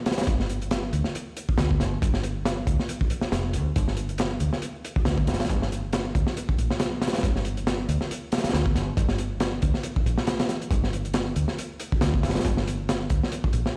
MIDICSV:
0, 0, Header, 1, 4, 480
1, 0, Start_track
1, 0, Key_signature, -2, "minor"
1, 0, Tempo, 434783
1, 306, Time_signature, 4, 2, 24, 8
1, 15195, End_track
2, 0, Start_track
2, 0, Title_t, "Fingered electric bass"
2, 0, Program_c, 0, 33
2, 299, Note_on_c, 0, 31, 100
2, 983, Note_off_c, 0, 31, 0
2, 1024, Note_on_c, 0, 38, 87
2, 1127, Note_off_c, 0, 38, 0
2, 1746, Note_on_c, 0, 38, 91
2, 1985, Note_on_c, 0, 31, 99
2, 2001, Note_off_c, 0, 38, 0
2, 2175, Note_off_c, 0, 31, 0
2, 2231, Note_on_c, 0, 31, 101
2, 2908, Note_off_c, 0, 31, 0
2, 2948, Note_on_c, 0, 38, 89
2, 3049, Note_off_c, 0, 38, 0
2, 3664, Note_on_c, 0, 29, 100
2, 3903, Note_on_c, 0, 38, 88
2, 3920, Note_off_c, 0, 29, 0
2, 4095, Note_off_c, 0, 38, 0
2, 4150, Note_on_c, 0, 31, 96
2, 4828, Note_off_c, 0, 31, 0
2, 4865, Note_on_c, 0, 38, 87
2, 4967, Note_off_c, 0, 38, 0
2, 5582, Note_on_c, 0, 38, 91
2, 5821, Note_on_c, 0, 31, 97
2, 5838, Note_off_c, 0, 38, 0
2, 6014, Note_off_c, 0, 31, 0
2, 6066, Note_on_c, 0, 31, 102
2, 6746, Note_off_c, 0, 31, 0
2, 6790, Note_on_c, 0, 38, 91
2, 6890, Note_off_c, 0, 38, 0
2, 7264, Note_on_c, 0, 34, 88
2, 7367, Note_off_c, 0, 34, 0
2, 7983, Note_on_c, 0, 31, 101
2, 8664, Note_off_c, 0, 31, 0
2, 8706, Note_on_c, 0, 38, 90
2, 8808, Note_off_c, 0, 38, 0
2, 9422, Note_on_c, 0, 38, 91
2, 9664, Note_on_c, 0, 31, 101
2, 9681, Note_off_c, 0, 38, 0
2, 9855, Note_off_c, 0, 31, 0
2, 9901, Note_on_c, 0, 31, 99
2, 10584, Note_off_c, 0, 31, 0
2, 10628, Note_on_c, 0, 38, 93
2, 10729, Note_off_c, 0, 38, 0
2, 11104, Note_on_c, 0, 34, 89
2, 11207, Note_off_c, 0, 34, 0
2, 11818, Note_on_c, 0, 31, 102
2, 12502, Note_off_c, 0, 31, 0
2, 12545, Note_on_c, 0, 38, 91
2, 12648, Note_off_c, 0, 38, 0
2, 13265, Note_on_c, 0, 38, 90
2, 13506, Note_on_c, 0, 31, 96
2, 13523, Note_off_c, 0, 38, 0
2, 13696, Note_off_c, 0, 31, 0
2, 13741, Note_on_c, 0, 31, 99
2, 14423, Note_off_c, 0, 31, 0
2, 14465, Note_on_c, 0, 38, 89
2, 14568, Note_off_c, 0, 38, 0
2, 14945, Note_on_c, 0, 34, 90
2, 15047, Note_off_c, 0, 34, 0
2, 15195, End_track
3, 0, Start_track
3, 0, Title_t, "Muted fingered electric bass strokes"
3, 1641, Note_on_c, 9, 29, 43
3, 1752, Note_off_c, 9, 29, 0
3, 3558, Note_on_c, 9, 29, 43
3, 3669, Note_off_c, 9, 29, 0
3, 5475, Note_on_c, 9, 29, 43
3, 5585, Note_off_c, 9, 29, 0
3, 9317, Note_on_c, 9, 29, 43
3, 9427, Note_off_c, 9, 29, 0
3, 13162, Note_on_c, 9, 29, 43
3, 13272, Note_off_c, 9, 29, 0
3, 15195, End_track
4, 0, Start_track
4, 0, Title_t, "Drums"
4, 63, Note_on_c, 9, 42, 65
4, 69, Note_on_c, 9, 38, 87
4, 127, Note_off_c, 9, 38, 0
4, 127, Note_on_c, 9, 38, 85
4, 133, Note_off_c, 9, 42, 0
4, 133, Note_on_c, 9, 42, 59
4, 197, Note_off_c, 9, 38, 0
4, 197, Note_off_c, 9, 42, 0
4, 197, Note_on_c, 9, 38, 84
4, 197, Note_on_c, 9, 42, 69
4, 239, Note_off_c, 9, 38, 0
4, 239, Note_on_c, 9, 38, 99
4, 252, Note_off_c, 9, 42, 0
4, 252, Note_on_c, 9, 42, 65
4, 298, Note_off_c, 9, 42, 0
4, 298, Note_on_c, 9, 42, 81
4, 299, Note_on_c, 9, 36, 118
4, 350, Note_off_c, 9, 38, 0
4, 408, Note_off_c, 9, 42, 0
4, 409, Note_off_c, 9, 36, 0
4, 440, Note_on_c, 9, 38, 44
4, 546, Note_on_c, 9, 42, 65
4, 550, Note_off_c, 9, 38, 0
4, 657, Note_off_c, 9, 42, 0
4, 681, Note_on_c, 9, 42, 43
4, 783, Note_off_c, 9, 42, 0
4, 783, Note_on_c, 9, 42, 90
4, 787, Note_on_c, 9, 38, 117
4, 893, Note_off_c, 9, 42, 0
4, 897, Note_off_c, 9, 38, 0
4, 1025, Note_on_c, 9, 42, 72
4, 1135, Note_off_c, 9, 42, 0
4, 1152, Note_on_c, 9, 38, 41
4, 1263, Note_off_c, 9, 38, 0
4, 1269, Note_on_c, 9, 42, 88
4, 1380, Note_off_c, 9, 42, 0
4, 1507, Note_on_c, 9, 42, 67
4, 1617, Note_off_c, 9, 42, 0
4, 1641, Note_on_c, 9, 36, 92
4, 1739, Note_on_c, 9, 38, 116
4, 1747, Note_on_c, 9, 42, 84
4, 1752, Note_off_c, 9, 36, 0
4, 1850, Note_off_c, 9, 38, 0
4, 1858, Note_off_c, 9, 42, 0
4, 1885, Note_on_c, 9, 36, 89
4, 1986, Note_on_c, 9, 38, 55
4, 1991, Note_on_c, 9, 42, 72
4, 1995, Note_off_c, 9, 36, 0
4, 2096, Note_off_c, 9, 38, 0
4, 2101, Note_off_c, 9, 42, 0
4, 2231, Note_on_c, 9, 36, 104
4, 2236, Note_on_c, 9, 42, 96
4, 2341, Note_off_c, 9, 36, 0
4, 2347, Note_off_c, 9, 42, 0
4, 2360, Note_on_c, 9, 38, 50
4, 2466, Note_on_c, 9, 42, 75
4, 2470, Note_off_c, 9, 38, 0
4, 2577, Note_off_c, 9, 42, 0
4, 2710, Note_on_c, 9, 38, 107
4, 2713, Note_on_c, 9, 42, 84
4, 2821, Note_off_c, 9, 38, 0
4, 2823, Note_off_c, 9, 42, 0
4, 2948, Note_on_c, 9, 36, 86
4, 2949, Note_on_c, 9, 42, 63
4, 3058, Note_off_c, 9, 36, 0
4, 3059, Note_off_c, 9, 42, 0
4, 3086, Note_on_c, 9, 38, 43
4, 3189, Note_on_c, 9, 42, 89
4, 3197, Note_off_c, 9, 38, 0
4, 3299, Note_off_c, 9, 42, 0
4, 3321, Note_on_c, 9, 36, 96
4, 3421, Note_on_c, 9, 42, 74
4, 3432, Note_off_c, 9, 36, 0
4, 3531, Note_off_c, 9, 42, 0
4, 3548, Note_on_c, 9, 38, 58
4, 3658, Note_off_c, 9, 38, 0
4, 3665, Note_on_c, 9, 38, 115
4, 3670, Note_on_c, 9, 42, 96
4, 3776, Note_off_c, 9, 38, 0
4, 3780, Note_off_c, 9, 42, 0
4, 3900, Note_on_c, 9, 42, 78
4, 4011, Note_off_c, 9, 42, 0
4, 4148, Note_on_c, 9, 42, 87
4, 4151, Note_on_c, 9, 36, 102
4, 4258, Note_off_c, 9, 42, 0
4, 4262, Note_off_c, 9, 36, 0
4, 4280, Note_on_c, 9, 38, 42
4, 4378, Note_on_c, 9, 42, 64
4, 4391, Note_off_c, 9, 38, 0
4, 4489, Note_off_c, 9, 42, 0
4, 4514, Note_on_c, 9, 42, 44
4, 4615, Note_off_c, 9, 42, 0
4, 4615, Note_on_c, 9, 42, 92
4, 4635, Note_on_c, 9, 38, 114
4, 4726, Note_off_c, 9, 42, 0
4, 4746, Note_off_c, 9, 38, 0
4, 4859, Note_on_c, 9, 42, 65
4, 4970, Note_off_c, 9, 42, 0
4, 4998, Note_on_c, 9, 38, 47
4, 5099, Note_on_c, 9, 42, 89
4, 5108, Note_off_c, 9, 38, 0
4, 5209, Note_off_c, 9, 42, 0
4, 5349, Note_on_c, 9, 42, 74
4, 5459, Note_off_c, 9, 42, 0
4, 5476, Note_on_c, 9, 36, 96
4, 5577, Note_on_c, 9, 38, 112
4, 5580, Note_on_c, 9, 42, 83
4, 5587, Note_off_c, 9, 36, 0
4, 5687, Note_off_c, 9, 38, 0
4, 5691, Note_off_c, 9, 42, 0
4, 5714, Note_on_c, 9, 36, 90
4, 5819, Note_on_c, 9, 42, 67
4, 5824, Note_off_c, 9, 36, 0
4, 5830, Note_on_c, 9, 38, 90
4, 5892, Note_off_c, 9, 38, 0
4, 5892, Note_off_c, 9, 42, 0
4, 5892, Note_on_c, 9, 38, 81
4, 5892, Note_on_c, 9, 42, 61
4, 5960, Note_off_c, 9, 42, 0
4, 5960, Note_on_c, 9, 42, 71
4, 5962, Note_off_c, 9, 38, 0
4, 5962, Note_on_c, 9, 38, 95
4, 6011, Note_off_c, 9, 42, 0
4, 6011, Note_on_c, 9, 42, 70
4, 6016, Note_off_c, 9, 38, 0
4, 6016, Note_on_c, 9, 38, 84
4, 6066, Note_on_c, 9, 36, 98
4, 6067, Note_off_c, 9, 42, 0
4, 6067, Note_on_c, 9, 42, 86
4, 6126, Note_off_c, 9, 38, 0
4, 6177, Note_off_c, 9, 36, 0
4, 6177, Note_off_c, 9, 42, 0
4, 6208, Note_on_c, 9, 38, 55
4, 6316, Note_on_c, 9, 42, 69
4, 6318, Note_off_c, 9, 38, 0
4, 6426, Note_off_c, 9, 42, 0
4, 6543, Note_on_c, 9, 42, 87
4, 6550, Note_on_c, 9, 38, 122
4, 6653, Note_off_c, 9, 42, 0
4, 6661, Note_off_c, 9, 38, 0
4, 6790, Note_on_c, 9, 36, 100
4, 6792, Note_on_c, 9, 42, 62
4, 6900, Note_off_c, 9, 36, 0
4, 6902, Note_off_c, 9, 42, 0
4, 6919, Note_on_c, 9, 38, 51
4, 7029, Note_off_c, 9, 38, 0
4, 7031, Note_on_c, 9, 42, 94
4, 7141, Note_off_c, 9, 42, 0
4, 7163, Note_on_c, 9, 36, 96
4, 7269, Note_on_c, 9, 42, 69
4, 7274, Note_off_c, 9, 36, 0
4, 7379, Note_off_c, 9, 42, 0
4, 7402, Note_on_c, 9, 38, 57
4, 7500, Note_on_c, 9, 42, 84
4, 7505, Note_off_c, 9, 38, 0
4, 7505, Note_on_c, 9, 38, 119
4, 7611, Note_off_c, 9, 42, 0
4, 7615, Note_off_c, 9, 38, 0
4, 7744, Note_on_c, 9, 38, 94
4, 7746, Note_on_c, 9, 42, 67
4, 7808, Note_off_c, 9, 42, 0
4, 7808, Note_on_c, 9, 42, 64
4, 7811, Note_off_c, 9, 38, 0
4, 7811, Note_on_c, 9, 38, 83
4, 7873, Note_off_c, 9, 38, 0
4, 7873, Note_on_c, 9, 38, 86
4, 7877, Note_off_c, 9, 42, 0
4, 7877, Note_on_c, 9, 42, 72
4, 7924, Note_off_c, 9, 42, 0
4, 7924, Note_on_c, 9, 42, 71
4, 7930, Note_off_c, 9, 38, 0
4, 7930, Note_on_c, 9, 38, 87
4, 7983, Note_on_c, 9, 36, 111
4, 7988, Note_off_c, 9, 42, 0
4, 7988, Note_on_c, 9, 42, 85
4, 8041, Note_off_c, 9, 38, 0
4, 8093, Note_off_c, 9, 36, 0
4, 8098, Note_off_c, 9, 42, 0
4, 8122, Note_on_c, 9, 38, 42
4, 8222, Note_on_c, 9, 42, 76
4, 8232, Note_off_c, 9, 38, 0
4, 8332, Note_off_c, 9, 42, 0
4, 8359, Note_on_c, 9, 42, 44
4, 8467, Note_on_c, 9, 38, 114
4, 8469, Note_off_c, 9, 42, 0
4, 8469, Note_on_c, 9, 42, 81
4, 8578, Note_off_c, 9, 38, 0
4, 8579, Note_off_c, 9, 42, 0
4, 8707, Note_on_c, 9, 42, 74
4, 8818, Note_off_c, 9, 42, 0
4, 8841, Note_on_c, 9, 38, 46
4, 8952, Note_off_c, 9, 38, 0
4, 8953, Note_on_c, 9, 42, 81
4, 9063, Note_off_c, 9, 42, 0
4, 9184, Note_on_c, 9, 42, 66
4, 9192, Note_on_c, 9, 38, 88
4, 9250, Note_off_c, 9, 42, 0
4, 9250, Note_on_c, 9, 42, 68
4, 9251, Note_off_c, 9, 38, 0
4, 9251, Note_on_c, 9, 38, 85
4, 9315, Note_off_c, 9, 38, 0
4, 9315, Note_on_c, 9, 38, 85
4, 9319, Note_off_c, 9, 42, 0
4, 9319, Note_on_c, 9, 42, 65
4, 9375, Note_off_c, 9, 42, 0
4, 9375, Note_on_c, 9, 42, 70
4, 9378, Note_off_c, 9, 38, 0
4, 9378, Note_on_c, 9, 38, 85
4, 9421, Note_off_c, 9, 38, 0
4, 9421, Note_on_c, 9, 38, 127
4, 9431, Note_off_c, 9, 42, 0
4, 9431, Note_on_c, 9, 42, 86
4, 9532, Note_off_c, 9, 38, 0
4, 9541, Note_off_c, 9, 42, 0
4, 9557, Note_on_c, 9, 36, 99
4, 9664, Note_on_c, 9, 38, 55
4, 9666, Note_on_c, 9, 42, 72
4, 9667, Note_off_c, 9, 36, 0
4, 9774, Note_off_c, 9, 38, 0
4, 9776, Note_off_c, 9, 42, 0
4, 9902, Note_on_c, 9, 36, 108
4, 9907, Note_on_c, 9, 42, 96
4, 10013, Note_off_c, 9, 36, 0
4, 10017, Note_off_c, 9, 42, 0
4, 10030, Note_on_c, 9, 38, 59
4, 10138, Note_on_c, 9, 42, 78
4, 10141, Note_off_c, 9, 38, 0
4, 10248, Note_off_c, 9, 42, 0
4, 10379, Note_on_c, 9, 42, 86
4, 10384, Note_on_c, 9, 38, 118
4, 10489, Note_off_c, 9, 42, 0
4, 10494, Note_off_c, 9, 38, 0
4, 10620, Note_on_c, 9, 42, 74
4, 10628, Note_on_c, 9, 36, 95
4, 10730, Note_off_c, 9, 42, 0
4, 10739, Note_off_c, 9, 36, 0
4, 10754, Note_on_c, 9, 38, 43
4, 10856, Note_on_c, 9, 42, 97
4, 10865, Note_off_c, 9, 38, 0
4, 10966, Note_off_c, 9, 42, 0
4, 10999, Note_on_c, 9, 36, 100
4, 11108, Note_on_c, 9, 42, 74
4, 11109, Note_off_c, 9, 36, 0
4, 11219, Note_off_c, 9, 42, 0
4, 11234, Note_on_c, 9, 38, 62
4, 11336, Note_on_c, 9, 42, 86
4, 11344, Note_off_c, 9, 38, 0
4, 11344, Note_on_c, 9, 38, 101
4, 11446, Note_off_c, 9, 42, 0
4, 11454, Note_off_c, 9, 38, 0
4, 11475, Note_on_c, 9, 42, 80
4, 11479, Note_on_c, 9, 38, 106
4, 11579, Note_off_c, 9, 42, 0
4, 11579, Note_on_c, 9, 42, 61
4, 11580, Note_off_c, 9, 38, 0
4, 11580, Note_on_c, 9, 38, 58
4, 11689, Note_off_c, 9, 42, 0
4, 11690, Note_off_c, 9, 38, 0
4, 11720, Note_on_c, 9, 42, 48
4, 11819, Note_on_c, 9, 36, 117
4, 11826, Note_off_c, 9, 42, 0
4, 11826, Note_on_c, 9, 42, 81
4, 11929, Note_off_c, 9, 36, 0
4, 11936, Note_off_c, 9, 42, 0
4, 11963, Note_on_c, 9, 38, 45
4, 12067, Note_on_c, 9, 42, 72
4, 12074, Note_off_c, 9, 38, 0
4, 12177, Note_off_c, 9, 42, 0
4, 12198, Note_on_c, 9, 42, 43
4, 12294, Note_off_c, 9, 42, 0
4, 12294, Note_on_c, 9, 42, 92
4, 12300, Note_on_c, 9, 38, 118
4, 12404, Note_off_c, 9, 42, 0
4, 12410, Note_off_c, 9, 38, 0
4, 12540, Note_on_c, 9, 42, 66
4, 12650, Note_off_c, 9, 42, 0
4, 12674, Note_on_c, 9, 38, 47
4, 12784, Note_off_c, 9, 38, 0
4, 12790, Note_on_c, 9, 42, 95
4, 12900, Note_off_c, 9, 42, 0
4, 13022, Note_on_c, 9, 42, 72
4, 13133, Note_off_c, 9, 42, 0
4, 13163, Note_on_c, 9, 36, 97
4, 13260, Note_on_c, 9, 38, 127
4, 13262, Note_on_c, 9, 42, 86
4, 13273, Note_off_c, 9, 36, 0
4, 13370, Note_off_c, 9, 38, 0
4, 13373, Note_off_c, 9, 42, 0
4, 13400, Note_on_c, 9, 36, 92
4, 13504, Note_on_c, 9, 38, 91
4, 13507, Note_on_c, 9, 42, 70
4, 13510, Note_off_c, 9, 36, 0
4, 13571, Note_off_c, 9, 38, 0
4, 13571, Note_on_c, 9, 38, 89
4, 13574, Note_off_c, 9, 42, 0
4, 13574, Note_on_c, 9, 42, 72
4, 13636, Note_off_c, 9, 42, 0
4, 13636, Note_on_c, 9, 42, 70
4, 13637, Note_off_c, 9, 38, 0
4, 13637, Note_on_c, 9, 38, 90
4, 13683, Note_off_c, 9, 38, 0
4, 13683, Note_on_c, 9, 38, 101
4, 13696, Note_off_c, 9, 42, 0
4, 13696, Note_on_c, 9, 42, 65
4, 13741, Note_off_c, 9, 42, 0
4, 13741, Note_on_c, 9, 36, 102
4, 13741, Note_on_c, 9, 42, 85
4, 13794, Note_off_c, 9, 38, 0
4, 13851, Note_off_c, 9, 36, 0
4, 13852, Note_off_c, 9, 42, 0
4, 13880, Note_on_c, 9, 38, 55
4, 13990, Note_off_c, 9, 38, 0
4, 13992, Note_on_c, 9, 42, 77
4, 14102, Note_off_c, 9, 42, 0
4, 14229, Note_on_c, 9, 42, 86
4, 14231, Note_on_c, 9, 38, 125
4, 14339, Note_off_c, 9, 42, 0
4, 14341, Note_off_c, 9, 38, 0
4, 14459, Note_on_c, 9, 42, 65
4, 14465, Note_on_c, 9, 36, 101
4, 14570, Note_off_c, 9, 42, 0
4, 14576, Note_off_c, 9, 36, 0
4, 14612, Note_on_c, 9, 38, 46
4, 14703, Note_on_c, 9, 42, 86
4, 14722, Note_off_c, 9, 38, 0
4, 14813, Note_off_c, 9, 42, 0
4, 14839, Note_on_c, 9, 36, 105
4, 14936, Note_on_c, 9, 42, 75
4, 14949, Note_off_c, 9, 36, 0
4, 15047, Note_off_c, 9, 42, 0
4, 15078, Note_on_c, 9, 38, 62
4, 15188, Note_off_c, 9, 38, 0
4, 15195, End_track
0, 0, End_of_file